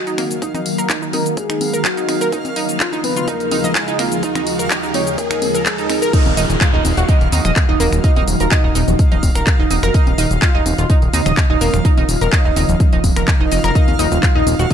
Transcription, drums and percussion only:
0.07 closed hi-hat, shaker
0.18 finger snap, open hi-hat, high conga
0.31 closed hi-hat, shaker
0.42 kick, closed hi-hat, shaker
0.55 closed hi-hat, high conga, low conga, shaker
0.66 open hi-hat
0.78 closed hi-hat, shaker
0.90 kick, clap, closed hi-hat, shaker
1.02 shaker
1.13 open hi-hat, high conga
1.26 closed hi-hat, shaker
1.37 kick, closed hi-hat, shaker
1.50 finger snap, closed hi-hat, shaker
1.61 open hi-hat, high conga
1.74 closed hi-hat, shaker
1.85 kick, clap, closed hi-hat, shaker
1.97 closed hi-hat, shaker
2.09 finger snap, open hi-hat, high conga
2.21 closed hi-hat, shaker
2.32 kick, closed hi-hat, shaker
2.45 closed hi-hat, high conga, shaker
2.56 open hi-hat
2.69 closed hi-hat, shaker
2.80 kick, clap, closed hi-hat, shaker
2.93 shaker
3.04 open hi-hat, high conga
3.16 closed hi-hat, shaker
3.28 kick, closed hi-hat, shaker
3.40 closed hi-hat, shaker
3.51 open hi-hat, high conga
3.64 closed hi-hat, low conga, shaker
3.75 kick, clap, closed hi-hat, shaker
3.88 closed hi-hat, shaker
3.99 finger snap, open hi-hat, high conga
4.12 closed hi-hat, shaker
4.23 kick, closed hi-hat, shaker
4.35 finger snap, closed hi-hat, high conga, low conga, shaker
4.47 open hi-hat
4.59 closed hi-hat, shaker
4.70 kick, clap, closed hi-hat, shaker
4.83 shaker
4.94 open hi-hat, high conga
5.07 closed hi-hat, shaker
5.18 kick, closed hi-hat, shaker
5.31 finger snap, closed hi-hat, shaker
5.42 open hi-hat, high conga
5.55 closed hi-hat, shaker
5.66 kick, clap, closed hi-hat, shaker
5.78 closed hi-hat, shaker
5.90 finger snap, open hi-hat, high conga
6.02 closed hi-hat, shaker
6.13 kick, closed hi-hat, crash, shaker
6.26 closed hi-hat, high conga
6.37 open hi-hat, shaker
6.50 closed hi-hat, shaker
6.61 kick, clap, closed hi-hat, shaker
6.85 open hi-hat, high conga, shaker
6.97 closed hi-hat, shaker
7.09 kick, closed hi-hat, shaker
7.21 closed hi-hat
7.32 open hi-hat, high conga, shaker
7.45 finger snap, closed hi-hat, low conga, shaker
7.56 kick, clap, closed hi-hat, shaker
7.80 open hi-hat, high conga, shaker
7.93 finger snap, closed hi-hat, shaker
8.04 kick, closed hi-hat, shaker
8.16 closed hi-hat, high conga
8.28 open hi-hat, shaker
8.40 closed hi-hat, shaker
8.51 kick, clap, closed hi-hat, shaker
8.75 open hi-hat, high conga, shaker
8.88 closed hi-hat, low conga, shaker
8.99 kick, closed hi-hat, shaker
9.12 closed hi-hat, low conga
9.23 kick, open hi-hat, high conga, shaker
9.35 finger snap, closed hi-hat, shaker
9.47 kick, clap, closed hi-hat, shaker
9.71 open hi-hat, high conga, shaker
9.83 finger snap, closed hi-hat, shaker
9.94 kick, closed hi-hat, shaker
10.07 closed hi-hat, high conga
10.18 open hi-hat, shaker
10.31 closed hi-hat, shaker
10.42 kick, clap, closed hi-hat, shaker
10.66 open hi-hat, high conga, shaker
10.78 closed hi-hat, shaker
10.90 kick, closed hi-hat, shaker
11.02 closed hi-hat
11.13 open hi-hat, high conga, shaker
11.26 finger snap, closed hi-hat, low conga, shaker
11.37 kick, clap, closed hi-hat, shaker
11.61 open hi-hat, high conga, shaker
11.74 finger snap, closed hi-hat, shaker
11.85 kick, closed hi-hat, shaker
11.97 closed hi-hat, high conga
12.09 open hi-hat, shaker
12.21 closed hi-hat, shaker
12.33 kick, clap, closed hi-hat, shaker
12.56 open hi-hat, high conga, shaker
12.69 closed hi-hat, low conga, shaker
12.80 kick, closed hi-hat, shaker
12.93 closed hi-hat, low conga
13.04 kick, open hi-hat, high conga, shaker
13.16 finger snap, closed hi-hat, shaker
13.28 kick, clap, closed hi-hat, shaker
13.52 open hi-hat, high conga, shaker
13.64 finger snap, closed hi-hat, shaker
13.75 kick, closed hi-hat, shaker
13.88 closed hi-hat, high conga
13.99 open hi-hat, shaker
14.12 closed hi-hat, shaker
14.23 kick, clap, closed hi-hat, shaker
14.47 open hi-hat, high conga, shaker
14.59 closed hi-hat, shaker
14.71 kick, closed hi-hat

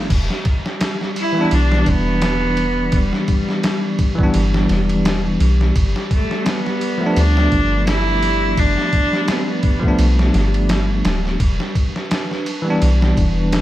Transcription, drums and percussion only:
0.10 kick, crash, ride
0.30 snare
0.45 kick, ride
0.66 snare
0.81 snare, ride
1.01 snare
1.16 ride
1.51 ride
1.72 snare
1.86 kick, ride
2.22 snare, ride
2.57 ride
2.92 kick, ride
3.13 snare
3.28 kick, ride
3.49 snare
3.63 snare, ride
3.99 kick, ride
4.19 kick
4.34 ride
4.54 snare
4.69 snare, ride
4.89 ride
5.05 snare, ride
5.40 ride
5.61 snare
5.76 kick, ride
5.96 snare
6.11 kick, ride
6.31 snare
6.46 snare, ride
6.67 snare
6.81 ride
7.16 ride
7.37 snare
7.52 kick, ride
7.87 snare, ride
8.22 ride
8.57 kick, ride
8.78 snare
8.93 kick, ride
9.13 snare
9.28 snare, ride
9.63 kick, ride
9.83 kick
9.99 ride
10.19 snare
10.34 snare, ride
10.54 ride
10.69 snare, ride
11.05 snare, ride
11.26 snare
11.40 kick, ride
11.60 snare
11.75 kick, ride
11.96 snare
12.11 snare, ride
12.31 snare
12.46 ride
12.82 ride
13.02 snare
13.17 kick, ride
13.52 snare, ride

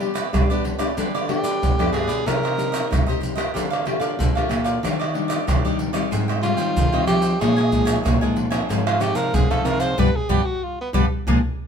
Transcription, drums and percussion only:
0.00 pandeiro
0.15 pandeiro, tamborim, maracas
0.34 pandeiro, tamborim, maracas, surdo
0.51 pandeiro, maracas
0.65 pandeiro
0.79 pandeiro, tamborim, maracas
0.98 pandeiro, maracas, surdo
1.15 pandeiro, tamborim, maracas
1.29 pandeiro, tamborim
1.44 pandeiro, maracas
1.63 pandeiro, maracas, surdo
1.80 pandeiro, tamborim, maracas
1.94 pandeiro, tamborim
2.09 pandeiro, maracas
2.28 pandeiro, tamborim, maracas, surdo
2.45 pandeiro, tamborim, maracas
2.59 pandeiro, maracas
2.74 pandeiro, tamborim, maracas
2.93 pandeiro, tamborim, maracas, surdo
3.10 pandeiro, maracas
3.23 pandeiro, maracas
3.38 pandeiro, tamborim, maracas
3.56 pandeiro, maracas, surdo
3.73 pandeiro, tamborim, maracas
3.87 pandeiro, tamborim
4.01 pandeiro, maracas
4.20 pandeiro, maracas, surdo
4.37 pandeiro, tamborim, maracas
4.51 pandeiro, tamborim, maracas
4.66 pandeiro, maracas
4.85 pandeiro, tamborim, maracas, surdo
5.01 pandeiro, tamborim, maracas
5.15 pandeiro
5.30 pandeiro, tamborim, maracas
5.48 pandeiro, tamborim, maracas, surdo
5.65 pandeiro, maracas
5.79 pandeiro
5.94 pandeiro, tamborim, maracas
6.12 pandeiro, maracas, surdo
6.29 pandeiro, tamborim, maracas
6.43 pandeiro, tamborim, maracas
6.58 pandeiro, maracas
6.77 pandeiro, maracas, surdo
6.94 pandeiro, tamborim, maracas
7.08 pandeiro, tamborim, maracas
7.22 pandeiro, maracas
7.41 pandeiro, tamborim, maracas, surdo
7.58 pandeiro, tamborim, maracas
7.72 pandeiro, maracas, surdo
7.87 pandeiro, tamborim, maracas
8.06 pandeiro, tamborim, maracas, surdo
8.23 pandeiro, maracas
8.37 pandeiro
8.52 pandeiro, tamborim, maracas
8.70 pandeiro, maracas, surdo
8.87 pandeiro, tamborim, maracas
9.01 pandeiro, tamborim, maracas
9.15 pandeiro, maracas
9.34 pandeiro, maracas, surdo
9.51 pandeiro, tamborim, maracas
9.65 pandeiro, tamborim, maracas
9.80 pandeiro, maracas
9.98 surdo
10.30 surdo
10.94 surdo
11.28 surdo

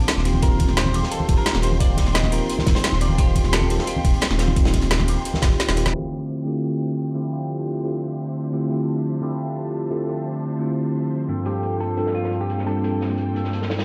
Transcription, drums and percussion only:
0.08 snare, closed hi-hat
0.17 snare
0.25 closed hi-hat, ride bell
0.34 high conga
0.42 kick, closed hi-hat
0.60 kick, closed hi-hat, ride bell, high conga
0.68 snare
0.77 snare, closed hi-hat
0.86 high conga
0.94 closed hi-hat, ride bell
1.03 snare
1.12 closed hi-hat
1.20 high conga
1.29 kick, closed hi-hat, ride bell
1.46 snare, closed hi-hat
1.54 snare
1.62 closed hi-hat, ride bell
1.72 high conga
1.80 kick, closed hi-hat
1.97 kick, snare, closed hi-hat, open hi-hat, ride bell, high conga
2.06 snare
2.15 snare, closed hi-hat
2.23 snare, high conga
2.32 closed hi-hat, open hi-hat, ride bell
2.50 closed hi-hat
2.58 snare, high conga
2.66 kick, snare, closed hi-hat, ride bell
2.75 snare, closed hi-hat
2.84 snare, closed hi-hat
2.92 snare
3.01 closed hi-hat, ride bell
3.09 high conga
3.18 kick, closed hi-hat
3.35 kick, closed hi-hat, ride bell, high conga
3.45 snare
3.52 snare, closed hi-hat
3.61 high conga
3.70 closed hi-hat, ride bell
3.78 snare
3.87 closed hi-hat
3.97 high conga
4.05 kick, closed hi-hat, ride bell
4.13 closed hi-hat
4.21 snare, closed hi-hat
4.31 snare
4.39 snare, closed hi-hat, ride bell
4.48 high conga
4.56 kick, closed hi-hat
4.65 snare, closed hi-hat
4.74 kick, snare, closed hi-hat, ride bell, high conga
4.82 snare, closed hi-hat
4.91 snare, closed hi-hat
5.00 snare, high conga
5.08 closed hi-hat, open hi-hat, ride bell
5.25 closed hi-hat
5.34 snare, high conga
5.42 kick, snare, closed hi-hat, ride bell
5.60 snare, closed hi-hat
5.68 snare
5.77 closed hi-hat, ride bell
5.86 snare, high conga
5.94 crash
11.45 closed hi-hat
11.63 closed hi-hat
11.80 closed hi-hat
11.97 closed hi-hat
12.06 snare
12.14 closed hi-hat
12.24 snare
12.32 closed hi-hat
12.50 closed hi-hat
12.58 snare
12.67 closed hi-hat
12.84 closed hi-hat
13.01 snare, open hi-hat
13.18 closed hi-hat
13.36 closed hi-hat
13.44 snare
13.53 closed hi-hat
13.62 snare
13.70 snare, closed hi-hat
13.79 snare, closed hi-hat

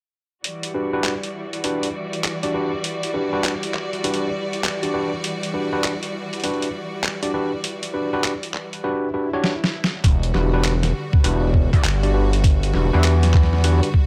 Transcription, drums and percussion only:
0.44 closed hi-hat
0.63 closed hi-hat
1.04 clap, closed hi-hat
1.23 closed hi-hat
1.53 closed hi-hat
1.64 closed hi-hat
1.83 closed hi-hat
2.13 closed hi-hat
2.24 clap, closed hi-hat
2.43 closed hi-hat
2.84 closed hi-hat
3.03 closed hi-hat
3.44 clap, closed hi-hat
3.63 closed hi-hat
3.74 clap
3.93 closed hi-hat
4.04 closed hi-hat
4.14 closed hi-hat
4.53 closed hi-hat
4.64 clap, closed hi-hat
4.83 closed hi-hat
5.24 closed hi-hat
5.43 closed hi-hat
5.84 clap, closed hi-hat
6.03 closed hi-hat
6.33 closed hi-hat
6.40 closed hi-hat
6.44 closed hi-hat
6.50 closed hi-hat
6.62 closed hi-hat
7.04 clap, closed hi-hat
7.23 closed hi-hat
7.64 closed hi-hat
7.83 closed hi-hat
8.24 clap, closed hi-hat
8.43 closed hi-hat
8.54 clap
8.73 closed hi-hat
9.44 snare
9.64 snare
9.84 snare
10.04 kick, closed hi-hat
10.23 closed hi-hat
10.34 snare
10.64 clap, closed hi-hat
10.83 snare, closed hi-hat
11.13 kick
11.24 closed hi-hat
11.54 kick
11.73 kick, closed hi-hat
11.84 clap, closed hi-hat
12.03 closed hi-hat
12.33 closed hi-hat
12.44 kick, closed hi-hat
12.63 closed hi-hat
12.74 snare
13.04 clap, closed hi-hat
13.23 snare, closed hi-hat
13.34 kick, clap, snare
13.43 snare
13.53 snare
13.58 snare
13.64 closed hi-hat
13.83 closed hi-hat
13.94 kick

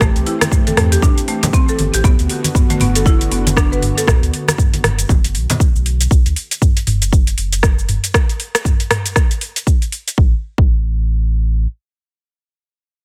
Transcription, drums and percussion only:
0.01 kick, cross-stick, low conga, shaker
0.16 closed hi-hat, shaker
0.26 open hi-hat
0.41 cross-stick, closed hi-hat, high conga, shaker
0.52 kick, mid tom, shaker
0.67 closed hi-hat, high conga, shaker
0.77 cross-stick, mid tom, open hi-hat
0.92 closed hi-hat, shaker
1.02 kick, high conga, low conga, shaker
1.18 closed hi-hat, shaker
1.28 open hi-hat
1.43 closed hi-hat, high conga, low conga, shaker
1.53 kick, shaker
1.69 shaker
1.79 open hi-hat, high conga
1.94 closed hi-hat, shaker
2.04 kick, low conga, shaker
2.19 closed hi-hat, shaker
2.29 open hi-hat
2.44 closed hi-hat, high conga, shaker
2.55 kick, mid tom, shaker
2.70 closed hi-hat, high conga, shaker
2.80 mid tom, open hi-hat, high conga
2.95 closed hi-hat, shaker
3.06 kick, shaker
3.21 closed hi-hat, shaker
3.32 open hi-hat
3.47 closed hi-hat, high conga, shaker
3.57 kick, cross-stick, shaker
3.73 shaker
3.82 mid tom, open hi-hat
3.98 closed hi-hat, shaker
4.08 kick, cross-stick, low conga, shaker
4.23 closed hi-hat, shaker
4.34 open hi-hat
4.48 cross-stick, closed hi-hat, high conga, shaker
4.58 kick, mid tom, shaker
4.74 closed hi-hat, high conga, shaker
4.84 cross-stick, mid tom, open hi-hat, high conga
4.99 closed hi-hat, shaker
5.09 kick, high conga, low conga, shaker
5.24 closed hi-hat, shaker
5.35 open hi-hat
5.50 closed hi-hat, high conga, low conga, shaker
5.60 kick, shaker
5.76 shaker
5.86 open hi-hat
6.01 closed hi-hat, shaker
6.11 kick, shaker
6.26 closed hi-hat, shaker
6.36 open hi-hat
6.51 closed hi-hat, shaker
6.62 kick, mid tom, shaker
6.77 closed hi-hat, shaker
6.87 mid tom, open hi-hat
7.02 closed hi-hat, shaker
7.13 kick, shaker
7.27 closed hi-hat, shaker
7.38 open hi-hat
7.53 closed hi-hat, shaker
7.63 kick, cross-stick, shaker
7.79 shaker
7.89 mid tom, open hi-hat
8.04 closed hi-hat, shaker
8.14 kick, cross-stick, shaker
8.29 closed hi-hat, shaker
8.40 open hi-hat
8.55 cross-stick, closed hi-hat, shaker
8.65 kick, mid tom, shaker
8.80 closed hi-hat, shaker
8.91 cross-stick, mid tom, open hi-hat
9.06 closed hi-hat, shaker
9.16 kick, cross-stick, shaker
9.31 closed hi-hat, shaker
9.41 open hi-hat
9.56 closed hi-hat, shaker
9.67 kick, shaker
9.82 closed hi-hat, shaker
9.92 open hi-hat
10.08 closed hi-hat, shaker
10.18 kick
10.58 kick

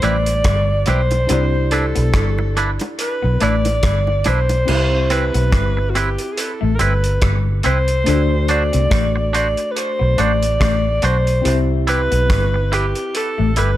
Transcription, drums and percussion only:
0.02 closed hi-hat
0.26 closed hi-hat
0.44 kick, cross-stick, closed hi-hat
0.86 closed hi-hat, high bongo, low bongo
1.11 closed hi-hat, high bongo
1.29 closed hi-hat, high bongo
1.71 closed hi-hat
1.96 closed hi-hat
2.14 kick, cross-stick, closed hi-hat
2.38 high bongo
2.57 closed hi-hat
2.79 closed hi-hat, high bongo
2.99 closed hi-hat
3.40 closed hi-hat
3.65 closed hi-hat, high bongo
3.83 kick, cross-stick, closed hi-hat
4.07 high bongo
4.24 closed hi-hat, high bongo, low bongo
4.49 closed hi-hat, high bongo
4.68 crash
5.10 closed hi-hat
5.34 closed hi-hat
5.53 kick, cross-stick, closed hi-hat
5.95 closed hi-hat
6.18 closed hi-hat
6.38 closed hi-hat
6.79 closed hi-hat
7.04 closed hi-hat
7.22 kick, cross-stick, closed hi-hat
7.63 closed hi-hat
7.88 closed hi-hat
8.06 closed hi-hat
8.48 closed hi-hat
8.73 closed hi-hat
8.91 kick, cross-stick, closed hi-hat
9.34 closed hi-hat
9.57 closed hi-hat
9.76 closed hi-hat
10.18 closed hi-hat
10.43 closed hi-hat
10.61 kick, cross-stick, closed hi-hat
11.02 closed hi-hat
11.27 closed hi-hat
11.45 closed hi-hat
11.87 closed hi-hat
12.12 closed hi-hat
12.30 kick, cross-stick, closed hi-hat
12.73 closed hi-hat
12.95 closed hi-hat
13.15 closed hi-hat
13.56 closed hi-hat

